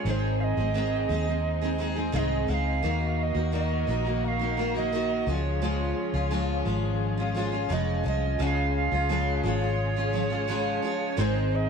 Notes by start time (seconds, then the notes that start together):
0.05 G#1 G#2 D#3 G#3 C4 D#4 G#4 C#5
0.10 C5
0.40 D#5 F5
0.57 G#1 G#3 C4 D#4 G#4
0.74 G#2 D#3 G#3 C4 D#4 G#4
1.09 D#2 G#3 C4 D#4 G#4
1.26 G#3 C4 D#4 G#4
1.61 G#3 C4 D#4 G#4
1.78 G#3 C4 D#4 G#4
1.95 G#3 C4 D#4 G#4
2.12 C2 G#2 D#3 G#3 C4 D#4 G#4 F5
2.18 D#5
2.47 C#2 G#3 C4 D#4 G#4 F#5
2.53 F5
2.83 D#2 D#3 A#3 D#4 F#4 A#4
3.19 D#5 F5
3.34 D#2 A#3 D#4 F#4
3.52 D#3 A#3 D#4 F#4 D#5
3.87 A#1 D#3 A#3 D#4 F#4
4.05 A#3 D#4 F#4
4.24 F5 F#5
4.39 A#3 D#4 F#4
4.57 D#3 A#3 D#4 F#4
4.74 A#3 D#4 F#4 D#5
4.92 D#3 A#3 D#4 F#4
5.25 C#2 F3 G#3 C#4 F4 G#4 D#5
5.33 C#5
5.62 C#3 F3 G#3 C#4 F4
6.14 C#2 G#3 C#4 F4
6.31 C#3 F3 G#3 C#4 F4
6.65 G#1 F3 G#3 C#4 F4
7.17 G#3 C#4 F4
7.34 F3 G#3 C#4 F4
7.52 G#3 C#4 F4
7.69 F1 C#3 F3 G#3 C#4 F4 D#5
8.03 C2 F3 G#3 C#4 F4 D#5
8.39 C#2 C#3 F3 G#3 C#4 F4 G#4 F#5
8.46 F5
8.76 F5
8.91 C#2 G#3 C#4 F4
9.09 C#3 F3 G#3 C#4 F4
9.43 G#1 F3 G#3 C#4 F4 C#5
9.61 G#3 C#4 F4
9.96 G#3 C#4 F4
10.13 F3 G#3 C#4 F4
10.30 G#3 C#4 F4
10.48 C#3 F3 G#3 C#4 F4
10.82 F3 G#3 C#4 F4
11.17 G#1 G#2 D#3 G#3 C4 D#4 G#4 C5
11.55 D#5